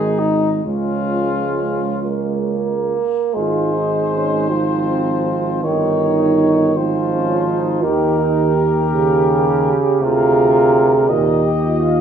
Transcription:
Already playing: G#1 D#3 G#3 D#4 G#4
0.19 D#4
0.64 C#2 F3 G#3 C#4 F4
2.04 A#3
3.33 G#1 G#3 F4 C5
3.37 D#4
3.75 D#4
4.14 C#4
4.51 F3 C4
5.64 G1 D#3 D#4 C#5
6.76 G#1 F3 C4 D#4 C5
7.13 C#4
7.30 F4
7.47 D#4
7.83 D#2 D#3 G4 A#4
8.19 D#4
8.56 G4
8.92 C#3
10.00 D2 C3 F4 G#4 A#4
11.09 D#2 A#2 D#4 G4 D#5
11.46 G4
11.65 F4
11.81 F4

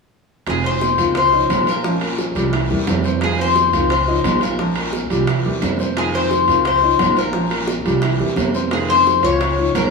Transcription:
0.46 F1 C3 D#3 G#3 C4 F4 G#4 F5, high bongo, high timbale, long guiro
0.64 C4 C5, high bongo, high timbale
0.81 high bongo, low timbale, short guiro
0.98 C#2 D#3 G#3 C4 F4 F5, high timbale, short guiro
1.15 C5, muted nylon-string guitar stroke, high bongo, high timbale, long guiro
1.32 F3 G#3 C#4 D#4 F4 D#5, high bongo
1.50 A#1 F3 G#3 D#4 F4, high bongo, low bongo, high timbale, low timbale, short guiro
1.67 F4 A#4 F5, high bongo, high timbale, short guiro
1.84 F3 G#3 C#4 F4, high bongo, long guiro
2.01 A#3 A#4, high bongo, high timbale
2.18 high bongo, low timbale, short guiro
2.35 C2 G3 G#3 C#4 F4 G4, high timbale, short guiro
2.53 E3 E4, muted nylon-string guitar stroke, high bongo, high timbale, long guiro
2.70 E2 E3 G3 A#3 C4 E4 G4, high bongo
2.87 F2 E3 A#3 C4 E4, high bongo, low bongo, high timbale, low timbale, short guiro
3.04 C4 C5, high bongo, short guiro
3.21 C3 D#3 G#3 C4 F4 G#4 F5, high bongo, high timbale, long guiro
3.39 C4 C5, high bongo, high timbale
3.56 high bongo, low timbale, short guiro
3.73 C#2 D#3 G#3 C4 F4 F5, high timbale, short guiro
3.90 C5, muted nylon-string guitar stroke, high bongo, high timbale, long guiro
4.08 F3 G#3 C#4 D#4 F4 D#5, high bongo
4.24 A#1 F3 G#3 D#4 F4, high bongo, low bongo, high timbale, low timbale, short guiro
4.41 F4 A#4 F5, high bongo, high timbale, short guiro
4.59 F3 G#3 C#4 F4, high bongo, long guiro
4.76 A#3 A#4, high bongo, high timbale
4.92 high bongo, low timbale, short guiro
5.10 C2 G3 G#3 C#4 F4 G4, high timbale, short guiro
5.27 E3 E4, muted nylon-string guitar stroke, high bongo, high timbale, long guiro
5.45 E2 E3 G3 A#3 C4 E4 G4, high bongo
5.62 F2 E3 A#3 C4 E4, high bongo, low bongo, high timbale, low timbale, short guiro
5.79 C4 C5, high bongo, short guiro
5.96 C3 D#3 G#3 C4 F4 G#4 F5, high bongo, high timbale, long guiro
6.14 C4 C5, high bongo, high timbale
6.31 high bongo, low timbale, short guiro
6.48 C#2 D#3 G#3 C4 F4 F5, high timbale, short guiro
6.65 C5, muted nylon-string guitar stroke, high bongo, high timbale, long guiro
6.82 F3 G#3 C#4 D#4 F4 D#5, high bongo
6.99 A#1 F3 G#3 D#4 F4, high bongo, low bongo, high timbale, low timbale, short guiro
7.16 F4 A#4 F5, high bongo, high timbale, short guiro
7.33 F3 G#3 C#4 F4, high bongo, long guiro
7.50 A#3 A#4, high bongo, high timbale
7.67 high bongo, low timbale, short guiro
7.85 C2 G3 G#3 C#4 F4 G4, high timbale, short guiro
8.02 E3 E4, muted nylon-string guitar stroke, high bongo, high timbale, long guiro
8.20 E2 E3 G3 A#3 C4 E4 G4, high bongo
8.36 F2 E3 A#3 C4 E4, high bongo, low bongo, high timbale, low timbale, short guiro
8.54 C4 C5, high bongo, short guiro
8.71 C3 D#3 G#3 C4 F4 G#4 F5, high bongo, high timbale, long guiro
8.89 C4 C5, high bongo, high timbale
9.06 high bongo, low timbale, short guiro
9.22 C#2 D#3 G#3 C4 F4 C#5 F5, high timbale, short guiro
9.40 muted nylon-string guitar stroke, high bongo, high timbale, long guiro
9.57 F3 G#3 C#4 D#4 F4 C#5, high bongo
9.74 A#1 F3 G#3 D#4 F4 A#4, high bongo, low bongo, high timbale, low timbale, short guiro

